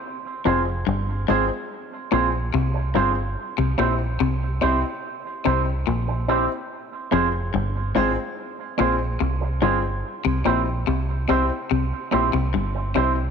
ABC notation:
X:1
M:4/4
L:1/16
Q:1/4=72
K:Fm
V:1 name="Clean electric guitar"
z2 [CFAc]2 z2 [CFAc]2 z2 [CFAc]2 z2 [CFAc]2 | z2 [C=EGc]2 z2 [CEGc]2 z2 [CEGc]2 z2 [CEGc]2 | z2 [CFAc]2 z2 [CFAc]2 z2 [CFAc]2 z2 [CFAc]2 | z2 [C=EGc]2 z2 [CEGc]2 z2 [CEGc]2 z2 [CEGc]2 |]
V:2 name="Upright piano"
z2 [CFAc]2 z2 [CFAc]2 z2 [CFAc]2 z2 [CFAc]2 | z2 [C=EGc]2 z2 [CEGc]2 z2 [CEGc]2 z2 [CEGc]2 | z2 [CFAc]2 z2 [CFAc]2 z2 [CFAc]2 z2 [CFAc]2 | z2 [C=EGc]2 z2 [CEGc]2 z2 [CEGc]2 z2 [CEGc]2 |]
V:3 name="Clean electric guitar" clef=bass
z2 F,,2 G,,2 A,, z3 B,,2 C,2 G,,2 | z C, B,,2 C,2 C, z3 C,2 B,,2 z2 | z2 F,,2 G,,2 A,, z3 B,,2 C,2 G,,2 | z C, B,,2 C,2 C, z C, z B,, C, G,,2 C,2 |]
V:4 name="Fingered electric bass" clef=bass
z2 F,,,2 G,,,2 A,,, z3 B,,,2 C,,2 G,,,2 | z C,, B,,,2 C,,2 C,, z3 C,,2 B,,,3 z | z2 F,,,2 G,,,2 A,,, z3 B,,,2 C,,2 G,,,2 | z C,, B,,,2 C,,2 C,, z C,, z B,,, C,, G,,,2 C,,2 |]